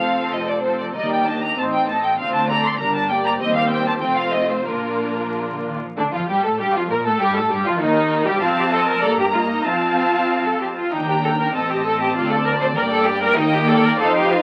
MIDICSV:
0, 0, Header, 1, 6, 480
1, 0, Start_track
1, 0, Key_signature, -2, "major"
1, 0, Tempo, 631579
1, 720, Time_signature, 2, 2, 24, 8
1, 1196, Tempo, 610998
1, 3116, Tempo, 645161
1, 5036, Tempo, 604230
1, 6956, Tempo, 634921
1, 8396, Tempo, 617284
1, 11118, End_track
2, 0, Start_track
2, 0, Title_t, "Violin section"
2, 0, Program_c, 0, 48
2, 0, Note_on_c, 0, 77, 56
2, 232, Note_off_c, 0, 77, 0
2, 248, Note_on_c, 0, 75, 46
2, 364, Note_off_c, 0, 75, 0
2, 364, Note_on_c, 0, 74, 45
2, 472, Note_on_c, 0, 72, 42
2, 483, Note_off_c, 0, 74, 0
2, 594, Note_off_c, 0, 72, 0
2, 600, Note_on_c, 0, 74, 36
2, 648, Note_off_c, 0, 74, 0
2, 720, Note_on_c, 0, 75, 53
2, 838, Note_off_c, 0, 75, 0
2, 844, Note_on_c, 0, 79, 45
2, 959, Note_off_c, 0, 79, 0
2, 962, Note_on_c, 0, 81, 51
2, 1080, Note_off_c, 0, 81, 0
2, 1082, Note_on_c, 0, 82, 50
2, 1196, Note_off_c, 0, 82, 0
2, 1200, Note_on_c, 0, 81, 52
2, 1248, Note_off_c, 0, 81, 0
2, 1322, Note_on_c, 0, 79, 55
2, 1438, Note_off_c, 0, 79, 0
2, 1444, Note_on_c, 0, 81, 56
2, 1559, Note_off_c, 0, 81, 0
2, 1565, Note_on_c, 0, 79, 46
2, 1676, Note_on_c, 0, 77, 60
2, 1680, Note_off_c, 0, 79, 0
2, 1794, Note_off_c, 0, 77, 0
2, 1800, Note_on_c, 0, 81, 57
2, 1916, Note_off_c, 0, 81, 0
2, 1918, Note_on_c, 0, 82, 59
2, 2034, Note_off_c, 0, 82, 0
2, 2039, Note_on_c, 0, 84, 61
2, 2143, Note_on_c, 0, 82, 56
2, 2156, Note_off_c, 0, 84, 0
2, 2264, Note_off_c, 0, 82, 0
2, 2276, Note_on_c, 0, 81, 69
2, 2391, Note_off_c, 0, 81, 0
2, 2392, Note_on_c, 0, 79, 67
2, 2439, Note_off_c, 0, 79, 0
2, 2515, Note_on_c, 0, 82, 59
2, 2562, Note_off_c, 0, 82, 0
2, 2633, Note_on_c, 0, 75, 72
2, 2750, Note_off_c, 0, 75, 0
2, 2752, Note_on_c, 0, 77, 66
2, 2864, Note_on_c, 0, 79, 72
2, 2870, Note_off_c, 0, 77, 0
2, 2987, Note_off_c, 0, 79, 0
2, 2996, Note_on_c, 0, 81, 63
2, 3044, Note_off_c, 0, 81, 0
2, 3112, Note_on_c, 0, 79, 57
2, 3220, Note_on_c, 0, 77, 64
2, 3230, Note_off_c, 0, 79, 0
2, 3339, Note_on_c, 0, 75, 59
2, 3347, Note_off_c, 0, 77, 0
2, 3468, Note_off_c, 0, 75, 0
2, 3472, Note_on_c, 0, 72, 51
2, 3592, Note_on_c, 0, 70, 41
2, 3596, Note_off_c, 0, 72, 0
2, 4085, Note_off_c, 0, 70, 0
2, 4569, Note_on_c, 0, 62, 54
2, 4680, Note_off_c, 0, 62, 0
2, 4689, Note_on_c, 0, 65, 53
2, 4804, Note_off_c, 0, 65, 0
2, 4809, Note_on_c, 0, 67, 60
2, 4922, Note_off_c, 0, 67, 0
2, 4922, Note_on_c, 0, 69, 53
2, 5037, Note_off_c, 0, 69, 0
2, 5038, Note_on_c, 0, 67, 57
2, 5087, Note_off_c, 0, 67, 0
2, 5165, Note_on_c, 0, 65, 58
2, 5212, Note_off_c, 0, 65, 0
2, 5281, Note_on_c, 0, 70, 64
2, 5328, Note_off_c, 0, 70, 0
2, 5399, Note_on_c, 0, 69, 61
2, 5515, Note_on_c, 0, 67, 68
2, 5517, Note_off_c, 0, 69, 0
2, 5637, Note_off_c, 0, 67, 0
2, 5644, Note_on_c, 0, 69, 60
2, 5761, Note_off_c, 0, 69, 0
2, 5767, Note_on_c, 0, 67, 61
2, 5879, Note_off_c, 0, 67, 0
2, 5883, Note_on_c, 0, 65, 60
2, 5998, Note_off_c, 0, 65, 0
2, 6003, Note_on_c, 0, 63, 62
2, 6347, Note_on_c, 0, 67, 65
2, 6356, Note_off_c, 0, 63, 0
2, 6469, Note_off_c, 0, 67, 0
2, 6470, Note_on_c, 0, 81, 64
2, 6925, Note_off_c, 0, 81, 0
2, 6952, Note_on_c, 0, 82, 65
2, 7432, Note_on_c, 0, 81, 60
2, 7433, Note_off_c, 0, 82, 0
2, 8242, Note_off_c, 0, 81, 0
2, 8396, Note_on_c, 0, 82, 52
2, 8850, Note_off_c, 0, 82, 0
2, 8886, Note_on_c, 0, 81, 54
2, 9797, Note_off_c, 0, 81, 0
2, 9835, Note_on_c, 0, 79, 60
2, 10274, Note_off_c, 0, 79, 0
2, 10308, Note_on_c, 0, 79, 75
2, 10760, Note_off_c, 0, 79, 0
2, 10796, Note_on_c, 0, 77, 67
2, 11118, Note_off_c, 0, 77, 0
2, 11118, End_track
3, 0, Start_track
3, 0, Title_t, "Violin section"
3, 0, Program_c, 1, 48
3, 0, Note_on_c, 1, 69, 35
3, 1, Note_on_c, 1, 72, 36
3, 471, Note_off_c, 1, 69, 0
3, 473, Note_off_c, 1, 72, 0
3, 480, Note_on_c, 1, 69, 27
3, 481, Note_on_c, 1, 72, 27
3, 716, Note_off_c, 1, 69, 0
3, 716, Note_off_c, 1, 72, 0
3, 722, Note_on_c, 1, 70, 36
3, 725, Note_on_c, 1, 74, 36
3, 944, Note_off_c, 1, 70, 0
3, 945, Note_off_c, 1, 74, 0
3, 964, Note_on_c, 1, 67, 34
3, 967, Note_on_c, 1, 75, 31
3, 1199, Note_off_c, 1, 67, 0
3, 1200, Note_off_c, 1, 75, 0
3, 1200, Note_on_c, 1, 72, 35
3, 1203, Note_off_c, 1, 72, 0
3, 1203, Note_on_c, 1, 72, 37
3, 1425, Note_off_c, 1, 72, 0
3, 1442, Note_on_c, 1, 75, 31
3, 1444, Note_on_c, 1, 69, 33
3, 1680, Note_off_c, 1, 75, 0
3, 1681, Note_off_c, 1, 69, 0
3, 1681, Note_on_c, 1, 65, 43
3, 1681, Note_on_c, 1, 72, 43
3, 1902, Note_off_c, 1, 65, 0
3, 1902, Note_off_c, 1, 72, 0
3, 1922, Note_on_c, 1, 74, 39
3, 1924, Note_on_c, 1, 69, 37
3, 2155, Note_on_c, 1, 70, 42
3, 2156, Note_off_c, 1, 74, 0
3, 2157, Note_off_c, 1, 69, 0
3, 2158, Note_off_c, 1, 70, 0
3, 2158, Note_on_c, 1, 70, 45
3, 2376, Note_off_c, 1, 70, 0
3, 2408, Note_on_c, 1, 67, 42
3, 2410, Note_on_c, 1, 74, 43
3, 2634, Note_off_c, 1, 67, 0
3, 2640, Note_off_c, 1, 74, 0
3, 2642, Note_on_c, 1, 72, 54
3, 2644, Note_on_c, 1, 67, 51
3, 3091, Note_off_c, 1, 72, 0
3, 3092, Note_off_c, 1, 67, 0
3, 3121, Note_on_c, 1, 65, 51
3, 3122, Note_on_c, 1, 72, 50
3, 3591, Note_off_c, 1, 72, 0
3, 3598, Note_off_c, 1, 65, 0
3, 3607, Note_on_c, 1, 65, 40
3, 3609, Note_on_c, 1, 70, 41
3, 4406, Note_off_c, 1, 65, 0
3, 4424, Note_off_c, 1, 70, 0
3, 4574, Note_on_c, 1, 62, 66
3, 4621, Note_off_c, 1, 62, 0
3, 4689, Note_on_c, 1, 65, 57
3, 4736, Note_off_c, 1, 65, 0
3, 4800, Note_on_c, 1, 67, 54
3, 4917, Note_off_c, 1, 67, 0
3, 4918, Note_on_c, 1, 69, 57
3, 4965, Note_off_c, 1, 69, 0
3, 5028, Note_on_c, 1, 67, 62
3, 5148, Note_on_c, 1, 65, 56
3, 5152, Note_off_c, 1, 67, 0
3, 5274, Note_off_c, 1, 65, 0
3, 5274, Note_on_c, 1, 70, 60
3, 5324, Note_off_c, 1, 70, 0
3, 5391, Note_on_c, 1, 69, 69
3, 5513, Note_off_c, 1, 69, 0
3, 5516, Note_on_c, 1, 67, 71
3, 5635, Note_on_c, 1, 69, 64
3, 5638, Note_off_c, 1, 67, 0
3, 5754, Note_on_c, 1, 67, 63
3, 5757, Note_off_c, 1, 69, 0
3, 5875, Note_off_c, 1, 67, 0
3, 5878, Note_on_c, 1, 65, 62
3, 5925, Note_off_c, 1, 65, 0
3, 5990, Note_on_c, 1, 63, 76
3, 6342, Note_off_c, 1, 63, 0
3, 6356, Note_on_c, 1, 67, 76
3, 6472, Note_on_c, 1, 77, 66
3, 6474, Note_off_c, 1, 67, 0
3, 6696, Note_off_c, 1, 77, 0
3, 6715, Note_on_c, 1, 75, 59
3, 6954, Note_on_c, 1, 74, 66
3, 6959, Note_off_c, 1, 75, 0
3, 7014, Note_off_c, 1, 74, 0
3, 7197, Note_on_c, 1, 75, 57
3, 7432, Note_off_c, 1, 75, 0
3, 7440, Note_on_c, 1, 77, 63
3, 8246, Note_off_c, 1, 77, 0
3, 8408, Note_on_c, 1, 79, 57
3, 8856, Note_off_c, 1, 79, 0
3, 8882, Note_on_c, 1, 75, 53
3, 9328, Note_off_c, 1, 75, 0
3, 9364, Note_on_c, 1, 74, 67
3, 10272, Note_off_c, 1, 74, 0
3, 10300, Note_on_c, 1, 75, 77
3, 10525, Note_off_c, 1, 75, 0
3, 10546, Note_on_c, 1, 74, 69
3, 10789, Note_off_c, 1, 74, 0
3, 10792, Note_on_c, 1, 72, 81
3, 11118, Note_off_c, 1, 72, 0
3, 11118, End_track
4, 0, Start_track
4, 0, Title_t, "Cello section"
4, 0, Program_c, 2, 48
4, 0, Note_on_c, 2, 41, 47
4, 182, Note_off_c, 2, 41, 0
4, 241, Note_on_c, 2, 41, 34
4, 666, Note_off_c, 2, 41, 0
4, 723, Note_on_c, 2, 39, 39
4, 1142, Note_off_c, 2, 39, 0
4, 1196, Note_on_c, 2, 45, 42
4, 1621, Note_off_c, 2, 45, 0
4, 1679, Note_on_c, 2, 38, 44
4, 2099, Note_off_c, 2, 38, 0
4, 2159, Note_on_c, 2, 43, 47
4, 2577, Note_off_c, 2, 43, 0
4, 2636, Note_on_c, 2, 39, 55
4, 3088, Note_off_c, 2, 39, 0
4, 3120, Note_on_c, 2, 41, 52
4, 3590, Note_off_c, 2, 41, 0
4, 3599, Note_on_c, 2, 46, 41
4, 4039, Note_off_c, 2, 46, 0
4, 4088, Note_on_c, 2, 46, 35
4, 4201, Note_off_c, 2, 46, 0
4, 4216, Note_on_c, 2, 50, 37
4, 4264, Note_off_c, 2, 50, 0
4, 4339, Note_on_c, 2, 51, 39
4, 4455, Note_off_c, 2, 51, 0
4, 4458, Note_on_c, 2, 53, 39
4, 4504, Note_off_c, 2, 53, 0
4, 4575, Note_on_c, 2, 62, 68
4, 4683, Note_off_c, 2, 62, 0
4, 4692, Note_on_c, 2, 65, 51
4, 4805, Note_off_c, 2, 65, 0
4, 4806, Note_on_c, 2, 67, 62
4, 4853, Note_off_c, 2, 67, 0
4, 4925, Note_on_c, 2, 69, 57
4, 5035, Note_on_c, 2, 67, 63
4, 5036, Note_off_c, 2, 69, 0
4, 5155, Note_off_c, 2, 67, 0
4, 5161, Note_on_c, 2, 65, 61
4, 5278, Note_on_c, 2, 70, 68
4, 5281, Note_off_c, 2, 65, 0
4, 5396, Note_off_c, 2, 70, 0
4, 5402, Note_on_c, 2, 69, 71
4, 5517, Note_on_c, 2, 67, 72
4, 5519, Note_off_c, 2, 69, 0
4, 5636, Note_off_c, 2, 67, 0
4, 5641, Note_on_c, 2, 69, 62
4, 5757, Note_off_c, 2, 69, 0
4, 5758, Note_on_c, 2, 67, 67
4, 5806, Note_off_c, 2, 67, 0
4, 5883, Note_on_c, 2, 65, 66
4, 5929, Note_off_c, 2, 65, 0
4, 5999, Note_on_c, 2, 63, 70
4, 6347, Note_off_c, 2, 63, 0
4, 6357, Note_on_c, 2, 67, 80
4, 6472, Note_off_c, 2, 67, 0
4, 6480, Note_on_c, 2, 65, 80
4, 6527, Note_off_c, 2, 65, 0
4, 6601, Note_on_c, 2, 67, 80
4, 6648, Note_off_c, 2, 67, 0
4, 6717, Note_on_c, 2, 69, 91
4, 6835, Note_off_c, 2, 69, 0
4, 6841, Note_on_c, 2, 70, 88
4, 6959, Note_off_c, 2, 70, 0
4, 6961, Note_on_c, 2, 69, 88
4, 7078, Note_off_c, 2, 69, 0
4, 7083, Note_on_c, 2, 67, 85
4, 7129, Note_off_c, 2, 67, 0
4, 7193, Note_on_c, 2, 65, 77
4, 7241, Note_off_c, 2, 65, 0
4, 7318, Note_on_c, 2, 63, 74
4, 7436, Note_off_c, 2, 63, 0
4, 7436, Note_on_c, 2, 65, 71
4, 8038, Note_off_c, 2, 65, 0
4, 8039, Note_on_c, 2, 69, 63
4, 8158, Note_on_c, 2, 67, 61
4, 8159, Note_off_c, 2, 69, 0
4, 8206, Note_off_c, 2, 67, 0
4, 8277, Note_on_c, 2, 65, 70
4, 8395, Note_off_c, 2, 65, 0
4, 8395, Note_on_c, 2, 63, 67
4, 8518, Note_on_c, 2, 67, 67
4, 8519, Note_off_c, 2, 63, 0
4, 8567, Note_off_c, 2, 67, 0
4, 8640, Note_on_c, 2, 69, 72
4, 8689, Note_off_c, 2, 69, 0
4, 8763, Note_on_c, 2, 70, 69
4, 8881, Note_off_c, 2, 70, 0
4, 8881, Note_on_c, 2, 69, 77
4, 8999, Note_off_c, 2, 69, 0
4, 9000, Note_on_c, 2, 67, 72
4, 9115, Note_on_c, 2, 69, 80
4, 9121, Note_off_c, 2, 67, 0
4, 9235, Note_off_c, 2, 69, 0
4, 9239, Note_on_c, 2, 67, 77
4, 9356, Note_off_c, 2, 67, 0
4, 9358, Note_on_c, 2, 65, 83
4, 9474, Note_off_c, 2, 65, 0
4, 9477, Note_on_c, 2, 69, 76
4, 9590, Note_on_c, 2, 70, 90
4, 9594, Note_off_c, 2, 69, 0
4, 9637, Note_off_c, 2, 70, 0
4, 9710, Note_on_c, 2, 72, 82
4, 9757, Note_off_c, 2, 72, 0
4, 9825, Note_on_c, 2, 70, 98
4, 9872, Note_off_c, 2, 70, 0
4, 9943, Note_on_c, 2, 69, 92
4, 10057, Note_on_c, 2, 67, 103
4, 10059, Note_off_c, 2, 69, 0
4, 10179, Note_off_c, 2, 67, 0
4, 10181, Note_on_c, 2, 70, 116
4, 10295, Note_on_c, 2, 63, 105
4, 10298, Note_off_c, 2, 70, 0
4, 10418, Note_off_c, 2, 63, 0
4, 10423, Note_on_c, 2, 67, 95
4, 10542, Note_on_c, 2, 69, 108
4, 10543, Note_off_c, 2, 67, 0
4, 10664, Note_off_c, 2, 69, 0
4, 10664, Note_on_c, 2, 70, 97
4, 10787, Note_off_c, 2, 70, 0
4, 10788, Note_on_c, 2, 69, 91
4, 10908, Note_off_c, 2, 69, 0
4, 10913, Note_on_c, 2, 67, 90
4, 11031, Note_on_c, 2, 65, 91
4, 11033, Note_off_c, 2, 67, 0
4, 11118, Note_off_c, 2, 65, 0
4, 11118, End_track
5, 0, Start_track
5, 0, Title_t, "Viola section"
5, 0, Program_c, 3, 48
5, 0, Note_on_c, 3, 53, 36
5, 0, Note_on_c, 3, 60, 35
5, 467, Note_off_c, 3, 60, 0
5, 468, Note_off_c, 3, 53, 0
5, 482, Note_on_c, 3, 53, 30
5, 484, Note_on_c, 3, 60, 29
5, 717, Note_off_c, 3, 53, 0
5, 718, Note_off_c, 3, 60, 0
5, 729, Note_on_c, 3, 63, 35
5, 730, Note_on_c, 3, 55, 34
5, 947, Note_off_c, 3, 63, 0
5, 948, Note_off_c, 3, 55, 0
5, 965, Note_on_c, 3, 58, 33
5, 965, Note_on_c, 3, 62, 32
5, 1195, Note_on_c, 3, 60, 33
5, 1197, Note_on_c, 3, 63, 33
5, 1199, Note_off_c, 3, 58, 0
5, 1199, Note_off_c, 3, 62, 0
5, 1420, Note_off_c, 3, 60, 0
5, 1422, Note_off_c, 3, 63, 0
5, 1440, Note_on_c, 3, 60, 35
5, 1441, Note_on_c, 3, 57, 36
5, 1667, Note_off_c, 3, 60, 0
5, 1676, Note_on_c, 3, 60, 39
5, 1678, Note_on_c, 3, 62, 40
5, 1680, Note_off_c, 3, 57, 0
5, 1900, Note_off_c, 3, 60, 0
5, 1900, Note_off_c, 3, 62, 0
5, 1919, Note_on_c, 3, 57, 37
5, 1919, Note_on_c, 3, 60, 39
5, 2153, Note_on_c, 3, 55, 42
5, 2154, Note_on_c, 3, 62, 42
5, 2155, Note_off_c, 3, 57, 0
5, 2155, Note_off_c, 3, 60, 0
5, 2374, Note_off_c, 3, 55, 0
5, 2375, Note_off_c, 3, 62, 0
5, 2387, Note_on_c, 3, 58, 46
5, 2629, Note_off_c, 3, 58, 0
5, 2630, Note_on_c, 3, 55, 50
5, 2630, Note_on_c, 3, 60, 55
5, 3085, Note_off_c, 3, 55, 0
5, 3085, Note_off_c, 3, 60, 0
5, 3114, Note_on_c, 3, 57, 46
5, 3115, Note_on_c, 3, 60, 48
5, 3587, Note_off_c, 3, 60, 0
5, 3596, Note_off_c, 3, 57, 0
5, 3599, Note_on_c, 3, 62, 40
5, 3600, Note_on_c, 3, 58, 43
5, 4402, Note_off_c, 3, 62, 0
5, 4403, Note_off_c, 3, 58, 0
5, 4569, Note_on_c, 3, 50, 58
5, 4617, Note_off_c, 3, 50, 0
5, 4686, Note_on_c, 3, 53, 51
5, 4802, Note_off_c, 3, 53, 0
5, 4805, Note_on_c, 3, 55, 60
5, 4919, Note_off_c, 3, 55, 0
5, 4922, Note_on_c, 3, 57, 57
5, 5035, Note_on_c, 3, 55, 54
5, 5037, Note_off_c, 3, 57, 0
5, 5157, Note_on_c, 3, 53, 57
5, 5158, Note_off_c, 3, 55, 0
5, 5277, Note_on_c, 3, 58, 63
5, 5279, Note_off_c, 3, 53, 0
5, 5396, Note_on_c, 3, 57, 61
5, 5399, Note_off_c, 3, 58, 0
5, 5516, Note_off_c, 3, 57, 0
5, 5517, Note_on_c, 3, 55, 77
5, 5636, Note_off_c, 3, 55, 0
5, 5638, Note_on_c, 3, 57, 62
5, 5751, Note_on_c, 3, 55, 69
5, 5758, Note_off_c, 3, 57, 0
5, 5871, Note_off_c, 3, 55, 0
5, 5872, Note_on_c, 3, 53, 69
5, 5989, Note_on_c, 3, 51, 73
5, 5993, Note_off_c, 3, 53, 0
5, 6345, Note_on_c, 3, 55, 74
5, 6349, Note_off_c, 3, 51, 0
5, 6468, Note_off_c, 3, 55, 0
5, 6468, Note_on_c, 3, 60, 70
5, 6924, Note_off_c, 3, 60, 0
5, 6957, Note_on_c, 3, 58, 60
5, 7426, Note_off_c, 3, 58, 0
5, 7433, Note_on_c, 3, 60, 66
5, 8243, Note_off_c, 3, 60, 0
5, 8401, Note_on_c, 3, 62, 54
5, 8853, Note_off_c, 3, 62, 0
5, 8881, Note_on_c, 3, 60, 54
5, 9795, Note_off_c, 3, 60, 0
5, 9824, Note_on_c, 3, 58, 60
5, 10268, Note_off_c, 3, 58, 0
5, 10301, Note_on_c, 3, 58, 79
5, 10756, Note_off_c, 3, 58, 0
5, 10789, Note_on_c, 3, 63, 72
5, 11118, Note_off_c, 3, 63, 0
5, 11118, End_track
6, 0, Start_track
6, 0, Title_t, "Double bass section"
6, 0, Program_c, 4, 48
6, 0, Note_on_c, 4, 29, 44
6, 180, Note_off_c, 4, 29, 0
6, 236, Note_on_c, 4, 29, 35
6, 663, Note_off_c, 4, 29, 0
6, 724, Note_on_c, 4, 39, 40
6, 1142, Note_off_c, 4, 39, 0
6, 1195, Note_on_c, 4, 33, 38
6, 1621, Note_off_c, 4, 33, 0
6, 1677, Note_on_c, 4, 38, 47
6, 2097, Note_off_c, 4, 38, 0
6, 2152, Note_on_c, 4, 31, 47
6, 2573, Note_off_c, 4, 31, 0
6, 2636, Note_on_c, 4, 39, 57
6, 3088, Note_off_c, 4, 39, 0
6, 3119, Note_on_c, 4, 29, 51
6, 3589, Note_off_c, 4, 29, 0
6, 3602, Note_on_c, 4, 34, 44
6, 4420, Note_off_c, 4, 34, 0
6, 4569, Note_on_c, 4, 38, 57
6, 4616, Note_off_c, 4, 38, 0
6, 4688, Note_on_c, 4, 41, 49
6, 4735, Note_off_c, 4, 41, 0
6, 4807, Note_on_c, 4, 43, 57
6, 4854, Note_off_c, 4, 43, 0
6, 4920, Note_on_c, 4, 45, 56
6, 5034, Note_off_c, 4, 45, 0
6, 5036, Note_on_c, 4, 43, 62
6, 5085, Note_off_c, 4, 43, 0
6, 5162, Note_on_c, 4, 41, 60
6, 5276, Note_on_c, 4, 46, 69
6, 5279, Note_off_c, 4, 41, 0
6, 5398, Note_off_c, 4, 46, 0
6, 5398, Note_on_c, 4, 45, 61
6, 5513, Note_on_c, 4, 43, 68
6, 5519, Note_off_c, 4, 45, 0
6, 5631, Note_on_c, 4, 45, 61
6, 5634, Note_off_c, 4, 43, 0
6, 5750, Note_on_c, 4, 43, 68
6, 5755, Note_off_c, 4, 45, 0
6, 5872, Note_on_c, 4, 41, 57
6, 5873, Note_off_c, 4, 43, 0
6, 5988, Note_on_c, 4, 39, 64
6, 5991, Note_off_c, 4, 41, 0
6, 6341, Note_off_c, 4, 39, 0
6, 6347, Note_on_c, 4, 43, 67
6, 6467, Note_off_c, 4, 43, 0
6, 6468, Note_on_c, 4, 41, 70
6, 6924, Note_off_c, 4, 41, 0
6, 6954, Note_on_c, 4, 43, 70
6, 7431, Note_on_c, 4, 41, 54
6, 7434, Note_off_c, 4, 43, 0
6, 8225, Note_off_c, 4, 41, 0
6, 8394, Note_on_c, 4, 39, 52
6, 8850, Note_off_c, 4, 39, 0
6, 8878, Note_on_c, 4, 33, 51
6, 9358, Note_off_c, 4, 33, 0
6, 9358, Note_on_c, 4, 38, 64
6, 9817, Note_off_c, 4, 38, 0
6, 9824, Note_on_c, 4, 43, 73
6, 10295, Note_on_c, 4, 39, 80
6, 10299, Note_off_c, 4, 43, 0
6, 10754, Note_off_c, 4, 39, 0
6, 10783, Note_on_c, 4, 41, 80
6, 11118, Note_off_c, 4, 41, 0
6, 11118, End_track
0, 0, End_of_file